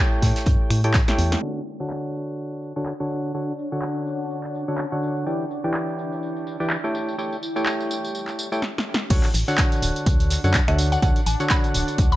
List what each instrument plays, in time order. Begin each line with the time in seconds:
Already playing: synth stab A3 E4 G4 A4 C#5 G5
0.22 fm bass A2, kick, snare, closed hi-hat, open hi-hat
0.36 snare, closed hi-hat
0.46 fm bass G2, kick, closed hi-hat
0.70 fm bass A2, finger snap, open hi-hat
0.84 synth stab A3 E4 G4 A4 C#5 G5, closed hi-hat
0.94 kick, snare, clap, closed hi-hat
1.08 synth stab A3 E4 G4 A4 C#5 G5, snare, closed hi-hat
1.18 fm bass E2, snare, closed hi-hat, open hi-hat
1.32 snare, closed hi-hat
1.42 synth stab D3 D4 F#4 A4 C#5, ambient pad D4
1.67 tambourine
1.80 synth stab D3 D4 F#4 A4 C#5 F#5, tambourine
1.90 clap, tambourine
2.04 tambourine
2.15 tambourine
2.24 ambient pad C#5
2.28 tambourine
2.34 ambient pad F#5
2.39 tambourine
2.52 tambourine
2.63 tambourine
2.76 synth stab D3 D4 F#4 A4 C#5 F#5, tambourine
2.86 clap, tambourine
3.00 synth stab D3 D4 F#4 A4 C#5 F#5, tambourine
3.11 tambourine
3.25 tambourine
3.34 synth stab D3 D4 F#4 A4 C#5 F#5, tambourine
3.48 tambourine
3.59 tambourine
3.72 synth stab D3 D4 F#4 A4 C#5 F#5, tambourine
3.82 clap, tambourine
3.97 tambourine
4.07 tambourine
4.20 tambourine
4.31 tambourine
4.44 clap, tambourine
4.55 tambourine
4.68 synth stab D3 D4 F#4 A4 C#5 F#5, tambourine
4.78 clap, tambourine
4.92 synth stab D3 D4 F#4 A4 C#5 F#5, tambourine
5.03 tambourine
5.16 tambourine
5.26 synth stab E3 E4 G4 B4 D5 G5, ambient pad E4, tambourine
5.40 tambourine
5.51 tambourine
5.64 synth stab E3 E4 G4 B4 D5 G5, tambourine
5.74 clap, tambourine
5.88 tambourine
5.99 ambient pad G5, tambourine
6.12 tambourine
6.23 tambourine
6.37 tambourine
6.47 tambourine
6.60 synth stab E3 E4 G4 B4 D5 G5, tambourine
6.70 clap, tambourine
6.84 synth stab A3 E4 G4 A4 C#5 G5, tambourine
6.94 ambient pad G4, tambourine
7.09 tambourine
7.18 synth stab A3 E4 G4 A4 C#5 G5, tambourine
7.33 tambourine
7.43 tambourine
7.56 synth stab A3 E4 G4 A4 C#5 G5, tambourine
7.66 clap, tambourine
7.80 tambourine
7.91 tambourine
8.05 tambourine
8.15 tambourine
8.28 clap, tambourine
8.39 tambourine
8.52 synth stab A3 E4 G4 A4 C#5 G5, tambourine
8.62 snare
8.78 snare
8.94 snare
9.10 fm bass D2, synth stab D3 D4 F#4 A4 C#5 F#5, ambient pad D4, kick, closed hi-hat, crash, tambourine
9.24 clap, closed hi-hat, tambourine
9.34 fm bass A1, closed hi-hat, open hi-hat, tambourine
9.47 synth stab D3 D4 F#4 A4 C#5 F#5, ambient pad F#5, snare, closed hi-hat, tambourine
9.58 kick, snare, clap, closed hi-hat, tambourine
9.72 closed hi-hat, tambourine
9.82 fm bass D1, closed hi-hat, open hi-hat, tambourine
9.96 closed hi-hat, tambourine
10.06 fm bass D2, kick, closed hi-hat, tambourine
10.20 closed hi-hat, tambourine
10.30 snare, closed hi-hat, open hi-hat, tambourine
10.44 fm bass F#2, synth stab D3 D4 F#4 A4 C#5 F#5, closed hi-hat, tambourine
10.54 kick, snare, clap, closed hi-hat, tambourine
10.68 fm bass D2, synth stab D3 D4 F#4 A4 C#5 F#5, synth pluck E5, finger snap, closed hi-hat, tambourine
10.78 closed hi-hat, open hi-hat, tambourine
10.92 synth pluck F#5, closed hi-hat, tambourine
11.02 fm bass D2, synth stab D3 D4 F#4 A4 C#5 F#5, synth pluck F#5, kick, closed hi-hat, tambourine
11.16 closed hi-hat, tambourine
11.26 fm bass A1, synth pluck A5, closed hi-hat, open hi-hat, tambourine
11.40 synth stab D3 D4 F#4 A4 C#5 F#5, closed hi-hat, tambourine
11.50 synth pluck B5, kick, snare, clap, closed hi-hat, tambourine
11.64 closed hi-hat, tambourine
11.74 fm bass D1, closed hi-hat, open hi-hat, tambourine
11.88 closed hi-hat, tambourine
11.98 fm bass D2, kick, closed hi-hat, tambourine
12.12 synth pluck B5, closed hi-hat, tambourine